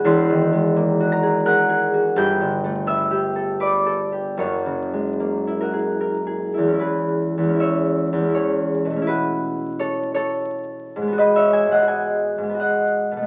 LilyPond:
<<
  \new Staff \with { instrumentName = "Harp" } { \time 3/4 \key e \lydian \tempo 4 = 83 << { <fis'' bis'' fis''' bis'''>4. <ais'' ais'''>8 <fis'' fis'''>4 | <g'' g'''>4 <e'' e'''>4 <d'' d'''>4 | <cis'' cis'''>4. <fis' ais'>4. | <gis' b'>4 <cis'' e''>4 <gis' cis''>4 |
<fis' b'>4 <a' cis''>8 <a' cis''>4. | <b' dis''>16 <cis'' e''>16 <e'' gis''>16 <dis'' fis''>16 <dis'' gis''>4 <dis'' fis''>4 | } \\ { \tuplet 3/2 { <e,, e, gis fis' gis'>8 dis8 gis8 ais8 fis'8 gis'8 ais'8 gis'8 fis'8 } | \tuplet 3/2 { <g,, g,>8 d8 a8 b8 g'8 a'8 b'8 a'8 g'8 } | \tuplet 3/2 { <fis,, fis,>8 cis8 gis8 ais8 e'8 gis'8 ais'8 gis'8 e'8~ } | e'2.~ |
e'2. | r2. | } >> }
  \new Staff \with { instrumentName = "Harp" } { \time 3/4 \key e \lydian r2. | r2. | r2. | <e, gis cis' e'>4 <e, gis cis' e'>4 <e, gis cis' e'>4 |
<b, a cis' e'>2. | <gis, gis b fis'>4 <gis, gis b fis'>4 <gis, gis b fis'>4 | }
>>